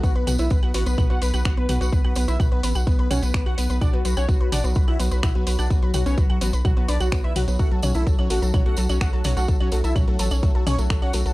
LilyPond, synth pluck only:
\new Staff \with { instrumentName = "Synth pluck" } { \time 4/4 \key fis \phrygian \tempo 4 = 127 <b b'>16 <b' b''>16 <fis' fis''>16 <b b'>16 <b' b''>16 <fis' fis''>16 <b b'>16 <b' b''>16 <fis' fis''>16 <b b'>16 <b' b''>16 <fis' fis''>16 <b b'>16 <b' b''>16 <fis' fis''>16 <b b'>16 | <b' b''>16 <fis' fis''>16 <b b'>16 <b' b''>16 <fis' fis''>16 <b b'>16 <b' b''>16 <fis' fis''>16 <b b'>16 <b' b''>16 <fis' fis''>16 <b b'>16 <b' b''>16 <fis' fis''>16 <b b'>16 <b' b''>16 | <fis' fis''>16 <b b'>16 <b' b''>16 <fis' fis''>16 <b b'>16 <b' b''>16 <fis' fis''>16 <b b'>16 <b' b''>16 <fis' fis''>16 <b b'>16 <b' b''>16 <fis' fis''>16 <b b'>16 <b' b''>16 <fis' fis''>16 | <b b'>16 <b' b''>16 <fis' fis''>16 <b b'>16 <b' b''>16 <fis' fis''>16 <b b'>16 <b' b''>16 <fis' fis''>16 <b b'>16 <b' b''>16 <fis' fis''>16 <b b'>16 <b' b''>16 <fis' fis''>16 <b b'>16 |
<a a'>16 <a' a''>16 <cis' cis''>16 <a a'>16 <a' a''>16 <cis' cis''>16 <a a'>16 <a' a''>16 <cis' cis''>16 <a a'>16 <a' a''>16 <cis' cis''>16 <a a'>16 <a' a''>16 <cis' cis''>16 <a a'>16 | <a' a''>16 <cis' cis''>16 <a a'>16 <a' a''>16 <cis' cis''>16 <a a'>16 <a' a''>16 <cis' cis''>16 <a a'>16 <a' a''>16 <cis' cis''>16 <a a'>16 a'16 <cis' cis''>16 <a a'>16 <a' a''>16 | }